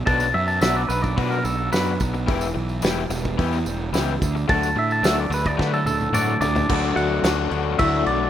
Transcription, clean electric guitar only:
0.07 A5
0.34 E5
0.48 A5
0.62 E5
0.76 D5
0.89 B4
1.02 D5
1.17 B4
1.30 A#4
1.44 A4
1.73 B4
4.50 A5
4.79 E5
4.92 A5
5.06 E5
5.20 D5
5.34 B4
5.46 D5
5.59 B4
5.74 A4
5.86 A4
6.14 A4 D5
6.41 D5
6.96 F#5
7.79 E5
8.07 D5

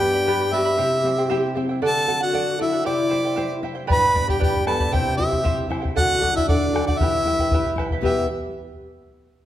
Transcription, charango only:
0.00 B4 D5 G5 B5
0.13 B4 D5 B5
0.27 G4 B4 D5 G5 B5
0.52 B4 D5 G5 B5
0.65 B4 D5 B5
0.77 E4 G4 C5 E5 G5
1.05 E4 C5 E5 G5
1.18 E4 C5 G5
1.30 E4 G4 C5 E5 G5
1.55 E4 C5 E5 G5
1.69 E4 C5 G5
1.82 A4 D5 F#5
2.08 A4 D5 F#5
2.20 D5 F#5
2.33 A4 D5 F#5
2.59 A4 D5 F#5
2.72 D5 F#5
2.84 E4 G4 C5 E5 G5
3.10 E4 C5 E5 G5
3.25 E4 C5 G5
3.36 E4 G4 C5 E5 G5
3.63 E4 C5 E5 G5
3.75 E4 C5 G5
3.87 G4 B4 D5 G5 B5
4.14 B4 D5 G5 B5
4.28 B4 D5 B5
4.40 G4 B4 D5 G5 B5
4.67 B4 D5 G5 B5
4.80 B4 D5 B5
4.92 E4 G4 C5 E5 G5
5.18 E4 C5 E5 G5
5.31 E4 C5 G5
5.44 E4 G4 C5 E5 G5
5.69 E4 C5 E5 G5
5.82 E4 C5 G5
5.96 A4 D5 F#5
6.20 A4 D5 F#5
6.35 D5 F#5
6.49 A4 D5 F#5
6.74 A4 D5 F#5
6.88 D5 F#5
7.01 E4 G4 B4 E5 G5
7.26 E4 B4 E5 G5
7.40 E4 B4 G5
7.54 E4 G4 B4 E5 G5
7.79 E4 B4 E5 G5
7.92 E4 B4 G5
8.03 E4 G4 B4 E5 G5

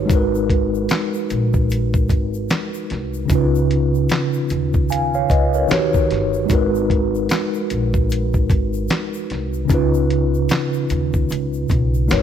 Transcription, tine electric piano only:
Already playing: D#3 D#4 F#4 G4 B4 C#5
0.05 G#3 D#4
0.10 F#4 A#4
0.15 B4
3.26 C#3 C#4
3.30 D#4 F4
3.35 B4
4.90 F5 G#5
5.15 C#5 F5
5.30 B4 D#5
5.55 A#4 C#5
5.68 D#3 D#4 F#4 G4 B4
5.73 C#5
6.46 G#3 D#4
6.50 F#4 A#4
6.55 B4
9.65 C#3 C#4
9.70 D#4 F4
9.75 B4
12.08 G#3 D#4 F#4 A#4 B4
12.12 C#5

